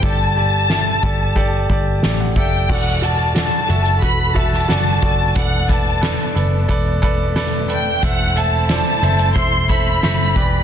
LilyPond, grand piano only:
<<
  \new Staff \with { instrumentName = "Grand piano" } { \time 4/4 \key b \phrygian \tempo 4 = 90 <g' a' d''>8 <g' a' d''>8 <g' a' e''>8 <g' a' d''>8 <g' a' d''>8 <g' a' d''>8 <g' a' d''>8 <g' a' d''>8 | <fis' a' d''>8 <fis' a' d''>8 <fis' a' d''>8 <fis' a' e''>8 <fis' a' b'>8 <fis' a' e''>8 <fis' a' d''>8 <fis' a' d''>8 | <a' b' d''>8 <a' b' d''>8 <a' b' d''>8 <a' b' d''>8 <a' b' d''>8 <a' b' d''>8 <a' b' d''>8 <a' b' d''>8 | <a' c'' e''>8 <a' c'' e''>8 <a' c'' d''>8 <a' c'' e''>8 <a' c'' e''>8 <a' c'' e''>8 <a' c'' e''>8 <g' b' d''>8 | }
  \new Staff \with { instrumentName = "Grand piano" } { \clef bass \time 4/4 \key b \phrygian g,4. r4 a''8 g''16 fis''16 e''8 | e4. r2 r8 | e4. r2 r8 | e4. r2 e8 | }
>>